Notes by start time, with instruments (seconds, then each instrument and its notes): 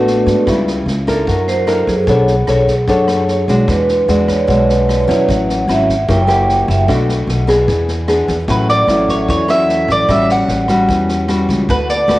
Already playing: upright bass A1, nylon-string guitar A2 A3 B3 F#4, vibraphone B3 D4 F#4 A4 B4 D5
0.07 snare
0.27 upright bass G#2, kick, snare
0.47 upright bass C#2, nylon-string guitar C#3 G3 B3 E4, kick, cross-stick, snare
0.67 snare
0.86 upright bass C#2, snare
1.07 nylon-string guitar D4 E4 A#4, vibraphone A4, kick, cross-stick, snare
1.27 upright bass F#2, nylon-string guitar F#3, vibraphone A#4, kick, snare
1.48 vibraphone C5, snare
1.67 nylon-string guitar D4 E4 A#4, vibraphone A4, cross-stick, snare
1.87 upright bass F#2, vibraphone G#4, kick, snare
2.07 upright bass B1, nylon-string guitar B3 D4 A4 C#5, kick, snare
2.27 snare
2.47 upright bass B1, nylon-string guitar D4 A4 C#5, cross-stick, snare
2.67 kick, snare
2.87 upright bass F#2, nylon-string guitar F#3 D4 A4 C#5, kick, snare
3.08 cross-stick, snare
3.28 vibraphone C#5, snare
3.48 upright bass B1, nylon-string guitar G#3 D4 F#4, kick, snare
3.68 upright bass E2, nylon-string guitar E3, vibraphone B4, kick, cross-stick, snare
3.88 snare
4.08 upright bass E2, nylon-string guitar G#3 D4 F#4, vibraphone D5, snare
4.28 vibraphone C#5, kick, cross-stick, snare
4.47 upright bass B1, nylon-string guitar B2 G#3 D4 F#4, kick, snare
4.69 vibraphone B4, snare
4.89 cross-stick, snare
5.07 upright bass E2, nylon-string guitar F#3 C#4 E4, kick, snare
5.28 upright bass A1, vibraphone F#5, kick, snare
5.49 snare
5.67 upright bass G#1, nylon-string guitar F#3 C#4 E4, vibraphone E5, cross-stick, snare
5.89 kick, snare
6.08 upright bass F#1, nylon-string guitar F#3 A#3 E4 G4, vibraphone G5, kick, snare
6.27 nylon-string guitar A#3 E4 G4, vibraphone F#5, cross-stick, snare
6.49 snare
6.68 upright bass F#1, vibraphone E5, kick, snare
6.88 upright bass B1, nylon-string guitar B2 A3 D4 F#4, kick, cross-stick, snare
7.09 snare
7.27 upright bass B1, snare
7.47 nylon-string guitar B3 D4 G#4, kick, cross-stick, snare
7.68 upright bass E2, nylon-string guitar E3, kick, snare
7.88 snare
8.08 nylon-string guitar B3 D4 G#4, cross-stick, snare
8.28 upright bass E2, kick, snare
8.48 upright bass A1, nylon-string guitar A2 F#3 C#4 E4, mandolin B4, kick, snare
8.69 mandolin D5, snare
8.88 upright bass A1, nylon-string guitar F#3 C#4 E4, vibraphone A4, cross-stick, snare
9.03 vibraphone E5
9.08 mandolin C#5, kick, snare
9.18 vibraphone F#5
9.28 upright bass E2, nylon-string guitar E3, mandolin C#5, kick, snare
9.48 nylon-string guitar F#3 C#4 E4, mandolin E5, cross-stick, snare
9.69 snare
9.88 upright bass A1, mandolin D5, kick, snare
10.08 upright bass A1, nylon-string guitar A2 G3 C#4 F#4, mandolin E5, kick, cross-stick, snare
10.29 mandolin F#5, snare
10.48 upright bass A1, snare
10.68 nylon-string guitar G3 C#4 F#4, kick, cross-stick, snare
10.88 upright bass E2, nylon-string guitar E3, kick, snare
11.09 snare
11.28 nylon-string guitar G3 C#4 F#4, cross-stick, snare
11.49 upright bass C#2, kick, snare
11.69 upright bass D2, nylon-string guitar D3 A3 B3 F#4, mandolin B4, kick, snare
11.89 mandolin D5, snare
12.08 upright bass D2, nylon-string guitar A3 B3 F#4, cross-stick, snare